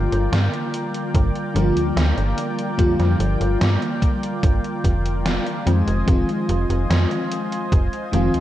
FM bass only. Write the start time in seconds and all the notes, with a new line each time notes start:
0.12 G1
0.32 G2
1.14 G1
1.55 G1
1.76 D2
1.96 D2
2.18 G1
2.79 F2
3.00 F2
3.20 G1
3.41 G1
3.61 G2
4.43 G1
4.84 F1
5.67 F2
5.87 F1
6.08 F1
6.49 F1
6.69 F1
6.90 F2
7.72 F1
8.13 F1
8.34 D2